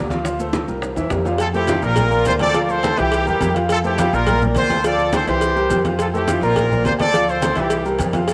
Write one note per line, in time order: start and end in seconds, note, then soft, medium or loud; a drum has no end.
0.00 0.63 D2 medium
0.10 0.22 F3 medium
0.10 0.22 F4 medium
0.10 0.23 F5 medium
0.10 high conga medium
0.10 high timbale medium
0.10 maracas soft
0.24 0.37 F3 medium
0.24 0.37 F4 medium
0.24 0.37 F5 medium
0.24 high bongo medium
0.24 high conga soft
0.24 maracas medium
0.39 0.63 A3 medium
0.39 0.64 A4 medium
0.39 0.64 C5 medium
0.39 high conga soft
0.39 maracas medium
0.53 high bongo medium
0.53 high conga loud
0.53 high timbale medium
0.53 low timbale medium
0.53 maracas medium
0.68 0.95 C2 medium
0.68 0.92 G3 medium
0.68 0.92 G4 medium
0.68 0.92 A#4 medium
0.68 high bongo soft
0.68 high conga soft
0.68 maracas soft
0.82 high bongo medium
0.82 high conga soft
0.82 high timbale medium
0.82 maracas medium
0.96 1.11 E2 medium
0.96 1.09 E3 medium
0.96 1.09 E4 medium
0.96 1.09 E5 medium
0.96 high bongo soft
0.96 high conga soft
0.96 high timbale medium
0.96 maracas medium
1.10 1.78 F2 medium
1.10 1.23 G3 medium
1.10 1.23 G4 medium
1.10 1.23 A#4 medium
1.10 high bongo medium
1.10 low bongo medium
1.10 high conga medium
1.10 low timbale medium
1.10 maracas medium
1.25 1.38 F3 medium
1.25 1.38 F4 medium
1.25 1.38 F5 medium
1.25 high bongo soft
1.25 high conga soft
1.25 low timbale medium
1.25 maracas soft
1.38 1.47 F4 medium
1.38 1.47 A4 medium
1.38 cowbell loud
1.38 high conga soft
1.38 low agogo loud
1.38 maracas medium
1.54 1.66 A3 medium
1.54 1.82 E4 medium
1.54 1.82 G4 loud
1.54 1.66 A4 medium
1.54 1.66 C5 medium
1.54 high conga soft
1.54 maracas soft
1.67 1.80 F3 medium
1.67 1.80 F4 medium
1.67 1.80 F5 medium
1.67 cowbell medium
1.67 high conga loud
1.67 low agogo medium
1.67 maracas medium
1.82 2.23 A#1 medium
1.82 2.06 A#3 medium
1.82 2.27 F4 medium
1.82 2.06 A#4 medium
1.82 2.27 A#4 loud
1.82 2.07 D5 medium
1.82 high conga soft
1.82 low agogo medium
1.82 maracas soft
1.96 cowbell loud
1.96 high conga soft
1.96 low conga medium
1.96 low agogo loud
1.96 maracas medium
2.10 2.35 A#3 medium
2.10 2.35 A#4 medium
2.10 2.35 D5 medium
2.10 high conga soft
2.10 maracas soft
2.25 2.93 D2 loud
2.25 2.34 F4 medium
2.25 2.34 C5 loud
2.25 cowbell medium
2.25 high conga medium
2.25 low agogo medium
2.25 maracas medium
2.39 2.52 A3 medium
2.39 2.52 A4 medium
2.39 2.62 A4 loud
2.39 2.52 C5 medium
2.39 2.61 D5 loud
2.39 cowbell medium
2.39 high conga medium
2.39 low agogo loud
2.39 maracas soft
2.53 2.77 F3 medium
2.53 2.78 F4 medium
2.53 2.78 F5 medium
2.53 cowbell loud
2.53 high conga soft
2.53 maracas medium
2.63 2.70 D5 medium
2.69 2.99 A4 medium
2.69 2.98 C5 loud
2.69 high conga soft
2.69 maracas soft
2.83 2.95 A3 medium
2.83 2.95 A4 medium
2.83 2.95 C5 medium
2.83 cowbell medium
2.83 high conga loud
2.83 low agogo loud
2.83 maracas medium
2.97 3.25 C2 medium
2.97 3.21 E3 medium
2.97 3.21 E4 medium
2.97 3.28 E4 medium
2.97 3.27 G4 loud
2.97 3.21 E5 medium
2.97 cowbell medium
2.97 high conga soft
2.97 maracas soft
3.12 cowbell loud
3.12 high conga soft
3.12 low agogo medium
3.12 maracas medium
3.26 3.40 E2 medium
3.26 3.38 G3 medium
3.26 3.54 E4 medium
3.26 3.38 G4 medium
3.26 3.54 G4 medium
3.26 3.38 A#4 medium
3.26 high conga soft
3.26 low agogo medium
3.26 maracas soft
3.40 4.07 F2 loud
3.40 3.52 G3 medium
3.40 3.52 G4 medium
3.40 3.52 A#4 medium
3.40 cowbell medium
3.40 high conga medium
3.40 low agogo loud
3.40 maracas medium
3.54 3.78 F3 medium
3.54 3.78 F4 medium
3.54 3.78 F5 medium
3.54 cowbell medium
3.54 maracas soft
3.69 3.78 F4 medium
3.69 3.77 A4 loud
3.69 cowbell loud
3.69 high conga soft
3.69 low agogo loud
3.69 maracas medium
3.84 3.96 A3 medium
3.84 4.11 E4 medium
3.84 4.11 G4 medium
3.84 3.96 A4 medium
3.84 3.96 C5 medium
3.84 high conga soft
3.84 maracas soft
3.98 4.11 F3 medium
3.98 4.11 F4 medium
3.98 4.11 F5 medium
3.98 cowbell medium
3.98 high conga loud
3.98 low agogo medium
3.98 maracas medium
4.13 4.53 A#1 loud
4.13 4.37 A#3 medium
4.13 4.42 F4 medium
4.13 4.37 A#4 medium
4.13 4.42 A#4 loud
4.13 4.37 D5 medium
4.13 high conga soft
4.13 low agogo medium
4.13 maracas soft
4.27 cowbell loud
4.27 high conga soft
4.27 low conga medium
4.27 low agogo loud
4.27 maracas medium
4.42 4.65 A#3 medium
4.42 4.65 A#4 medium
4.42 4.66 D5 medium
4.42 high conga soft
4.42 low conga medium
4.42 maracas soft
4.55 5.22 D2 medium
4.55 4.84 F4 medium
4.55 4.83 C5 loud
4.55 cowbell medium
4.55 high conga medium
4.55 low agogo medium
4.55 maracas medium
4.70 4.82 A3 medium
4.70 4.82 A4 medium
4.70 4.82 C5 medium
4.70 cowbell medium
4.70 high conga medium
4.70 low agogo loud
4.70 maracas soft
4.84 5.08 F3 medium
4.84 5.08 F4 medium
4.84 5.12 A4 medium
4.84 5.12 D5 loud
4.84 5.08 F5 medium
4.84 cowbell loud
4.84 high conga soft
4.84 maracas medium
4.98 high conga soft
4.98 maracas soft
5.13 5.25 A3 medium
5.13 5.25 A4 medium
5.13 5.27 A4 medium
5.13 5.25 C5 medium
5.13 5.27 C5 loud
5.13 cowbell medium
5.13 high conga loud
5.13 low agogo loud
5.13 maracas medium
5.27 5.67 C2 medium
5.27 5.50 E3 medium
5.27 5.51 E4 medium
5.27 5.81 G4 medium
5.27 5.81 C5 medium
5.27 5.51 E5 medium
5.27 cowbell medium
5.27 high conga soft
5.27 maracas soft
5.41 cowbell loud
5.41 high conga soft
5.41 low agogo medium
5.41 maracas medium
5.56 5.68 G3 medium
5.56 5.68 G4 medium
5.56 5.68 A#4 medium
5.56 high conga soft
5.56 low agogo medium
5.56 maracas soft
5.70 6.36 F2 medium
5.70 5.82 G3 medium
5.70 5.82 G4 medium
5.70 5.82 A#4 medium
5.70 cowbell medium
5.70 high conga medium
5.70 low agogo loud
5.70 maracas medium
5.85 6.08 F3 medium
5.85 6.09 F4 medium
5.85 6.09 F5 medium
5.85 cowbell medium
5.85 high conga medium
5.85 maracas soft
5.99 6.06 F4 medium
5.99 6.07 A4 medium
5.99 cowbell loud
5.99 high conga soft
5.99 low agogo loud
5.99 maracas medium
6.14 6.25 A3 medium
6.14 6.40 E4 medium
6.14 6.41 G4 medium
6.14 6.25 A4 medium
6.14 6.25 C5 medium
6.14 high conga soft
6.14 maracas soft
6.27 6.40 F3 medium
6.27 6.40 F4 medium
6.27 6.40 F5 medium
6.27 cowbell medium
6.27 high conga loud
6.27 low agogo medium
6.27 maracas medium
6.41 6.82 A#1 medium
6.41 6.66 A#3 medium
6.41 6.83 F4 medium
6.41 6.66 A#4 medium
6.41 6.83 A#4 loud
6.41 6.66 D5 medium
6.41 high conga soft
6.41 low agogo medium
6.41 maracas soft
6.56 cowbell loud
6.56 high conga soft
6.56 low conga medium
6.56 low agogo loud
6.56 maracas medium
6.71 6.94 A#3 medium
6.71 6.95 A#4 medium
6.71 6.95 D5 medium
6.71 high conga soft
6.71 low conga medium
6.71 maracas soft
6.84 7.51 D2 medium
6.84 6.92 F4 medium
6.84 6.92 C5 loud
6.84 cowbell medium
6.84 high conga medium
6.84 low timbale medium
6.84 low agogo medium
6.84 maracas medium
6.99 7.11 A3 medium
6.99 7.11 A4 medium
6.99 7.26 A4 medium
6.99 7.11 C5 medium
6.99 7.27 D5 loud
6.99 cowbell medium
6.99 high conga medium
6.99 low agogo loud
6.99 maracas soft
7.14 7.37 F3 medium
7.14 7.37 F4 medium
7.14 7.37 F5 medium
7.14 cowbell loud
7.14 high conga soft
7.14 maracas medium
7.28 7.57 A4 medium
7.28 7.57 C5 loud
7.28 high conga soft
7.28 maracas soft
7.42 7.54 A3 medium
7.42 7.54 A4 medium
7.42 7.54 C5 medium
7.42 cowbell medium
7.42 high conga loud
7.42 low agogo loud
7.42 maracas medium
7.55 7.97 C2 medium
7.55 7.79 E3 medium
7.55 7.79 E4 medium
7.55 7.86 E4 medium
7.55 7.86 G4 medium
7.55 7.80 E5 medium
7.55 cowbell medium
7.55 high conga soft
7.55 maracas soft
7.70 cowbell loud
7.70 high conga soft
7.70 low agogo medium
7.70 maracas medium
7.85 7.97 G3 medium
7.85 7.97 G4 medium
7.85 7.97 A#4 medium
7.85 high conga soft
7.85 low agogo medium
7.85 maracas soft
7.99 8.34 F2 medium
7.99 8.11 G3 medium
7.99 8.11 G4 medium
7.99 8.11 A#4 medium
7.99 cowbell medium
7.99 high conga medium
7.99 low agogo loud
7.99 maracas medium
8.13 8.34 F3 medium
8.13 8.34 F4 medium
8.13 8.34 F5 medium
8.13 cowbell medium
8.13 high conga medium
8.13 maracas soft
8.27 8.34 F4 medium
8.27 cowbell loud
8.27 high conga soft
8.27 low agogo loud
8.27 maracas medium